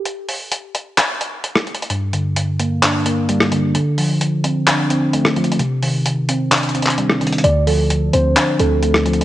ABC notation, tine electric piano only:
X:1
M:4/4
L:1/8
Q:1/4=130
K:Dphr
V:1 name="Tine electric piano" clef=bass
z8 | G,, D,2 B, D B, G, D, | D, F,2 C D C A, F, | C, E,2 C D C G, E, |
D, F,2 C D C A, F, |]